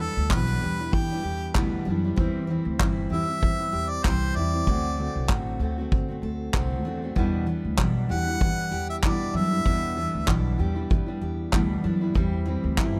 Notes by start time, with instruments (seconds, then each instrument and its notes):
Already playing: steel-string acoustic guitar D4 G4
0.00 steel-string acoustic guitar E3 G3 B3 D4 E4, harmonica A4
0.17 upright bass D2
0.30 upright bass B1, steel-string acoustic guitar E2 B2 E3 G3 C4 D4 E4, harmonica B4, kick, clap
0.47 steel-string acoustic guitar D4
0.61 upright bass E2, steel-string acoustic guitar E3 G3 D4 E4 G4
0.79 steel-string acoustic guitar E3 G3 D4 E4
0.92 upright bass E3, steel-string acoustic guitar B3, harmonica G4, kick
1.11 steel-string acoustic guitar E3 G3 D4 E4
1.23 upright bass E2, steel-string acoustic guitar G4
1.54 upright bass D2, steel-string acoustic guitar E2 B2 E3 G3 B3 D4 E4, kick, clap
1.85 upright bass F#2, steel-string acoustic guitar E3 G3 D4
1.90 steel-string acoustic guitar D4 E4
2.04 steel-string acoustic guitar E3 G3 D4 E4
2.16 upright bass E2, steel-string acoustic guitar E3 G3 C4, kick
2.20 steel-string acoustic guitar E4
2.47 steel-string acoustic guitar E3 G3 C4
2.51 steel-string acoustic guitar E4
2.65 upright bass D2
2.79 upright bass G1, steel-string acoustic guitar E3 G3 C4 E4, kick, clap
3.10 upright bass E2, steel-string acoustic guitar E3 G3 C4 E4 G4, harmonica E5
3.28 steel-string acoustic guitar G3 C4 E4
3.41 upright bass E3, steel-string acoustic guitar C4, kick
3.59 steel-string acoustic guitar G3 C4 E4
3.72 upright bass E2, steel-string acoustic guitar G4
3.89 harmonica D5
4.04 upright bass C2, steel-string acoustic guitar E3 G3 C4 E4, harmonica C5, kick, clap
4.35 upright bass E2, steel-string acoustic guitar E3 G3 C4 E4, harmonica D5
4.39 steel-string acoustic guitar E4
4.54 steel-string acoustic guitar G3 C4 E4
4.67 upright bass D2, steel-string acoustic guitar D3 F#3 A3 C4 F#4, kick
4.98 steel-string acoustic guitar D3 A3 C4 F#4
5.16 upright bass C2
5.29 upright bass A1, steel-string acoustic guitar D3 A3 C4 D4 F#4, kick, clap
5.59 upright bass D2, steel-string acoustic guitar D3 A3 C4 A4
5.64 steel-string acoustic guitar F#4
5.78 steel-string acoustic guitar A3 C4 F#4
5.92 upright bass D3, steel-string acoustic guitar C4, kick
6.08 steel-string acoustic guitar A3 C4 F#4
6.22 upright bass D2, steel-string acoustic guitar A4
6.54 upright bass C2, steel-string acoustic guitar D3 A3 C4 F#4, kick, clap
6.84 upright bass E2, steel-string acoustic guitar D3 A3 C4 D4 F#4
7.02 steel-string acoustic guitar A3 C4 F#4
7.16 upright bass E2, steel-string acoustic guitar E2 B2 E3 G3 B3 D4 E4, kick
7.46 steel-string acoustic guitar E3 G3 B3 D4 E4
7.64 upright bass D2
7.77 upright bass B1, steel-string acoustic guitar E2 B2 E3 G3 D4 E4, kick, clap
8.09 upright bass E2, steel-string acoustic guitar E3 G3 D4 E4 G4, harmonica F#5
8.27 steel-string acoustic guitar E3 G3 D4 E4
8.40 upright bass E3, steel-string acoustic guitar B3, kick
8.58 steel-string acoustic guitar E3 G3 D4 E4
8.71 upright bass E2, steel-string acoustic guitar G4
8.90 harmonica E5
9.03 upright bass D2, steel-string acoustic guitar E2 B2 E3 G3 B3 D4 E4, harmonica D5, kick, clap
9.34 upright bass F#2, steel-string acoustic guitar E3 G3 D4 E4, harmonica E5
9.51 steel-string acoustic guitar E3 G3 D4 E4
9.65 steel-string acoustic guitar E2 B2 E3 G3 B3 D4 E4, upright bass E2, kick
9.96 steel-string acoustic guitar E3 G3 B3 D4 E4
10.14 upright bass D2
10.27 upright bass B1, steel-string acoustic guitar E2 B2 E3 G3 D4 E4, kick, clap
10.58 upright bass E2, steel-string acoustic guitar E3 G3 D4 E4 G4
10.75 steel-string acoustic guitar E3 G3 D4 E4
10.90 upright bass E3, steel-string acoustic guitar B3, kick
11.06 steel-string acoustic guitar E3 G3 D4 E4
11.21 upright bass E2, steel-string acoustic guitar G4
11.53 upright bass D2, steel-string acoustic guitar E2 B2 E3 G3 B3 D4 E4, kick, clap
11.84 upright bass F#2, steel-string acoustic guitar E3 G3 D4 E4
12.01 steel-string acoustic guitar E3 G3 D4 E4
12.15 upright bass E2, steel-string acoustic guitar E3 G3 C4 E4, kick
12.45 steel-string acoustic guitar E3 G3 C4 E4
12.64 upright bass D2
12.77 upright bass G1, steel-string acoustic guitar E3 G3 C4 E4, kick, clap